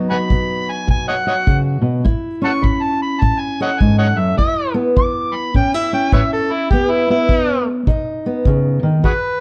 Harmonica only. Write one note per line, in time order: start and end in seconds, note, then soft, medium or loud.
0.10 0.17 F#5 medium
0.10 0.17 G#5 medium
0.10 0.72 B5 loud
0.70 0.88 G#5 loud
0.90 1.08 G#5 medium
1.08 1.16 C#5 medium
1.08 1.15 D#5 medium
1.08 1.26 F#5 loud
1.27 1.35 C#5 medium
1.27 1.34 D#5 medium
1.27 1.58 F#5 medium
2.44 2.52 F#5 medium
2.44 2.51 A5 medium
2.44 2.66 C#6 loud
2.65 2.84 B5 medium
2.82 3.01 A5 medium
3.02 3.23 B5 loud
3.21 3.41 A5 loud
3.39 3.58 G#5 loud
3.62 3.71 C#5 medium
3.62 3.70 D#5 medium
3.62 3.81 F#5 loud
3.80 3.98 G#5 loud
3.99 4.07 C#5 medium
3.99 4.07 D#5 medium
3.99 4.19 F#5 loud
4.18 4.36 E5 loud
4.38 4.74 E5 loud
4.98 5.37 D6 loud
5.35 5.53 B5 loud
5.56 5.74 G5 loud
5.75 5.93 E5 loud
5.94 6.12 G5 loud
6.13 6.21 B4 medium
6.13 6.21 C#5 medium
6.13 6.31 E5 loud
6.33 6.53 A4 medium
6.52 6.70 E4 medium
6.70 6.92 G4 medium
6.91 7.09 E4 medium
7.11 7.66 E4 loud
9.05 9.13 F#4 medium
9.05 9.13 G#4 medium
9.05 9.40 B4 medium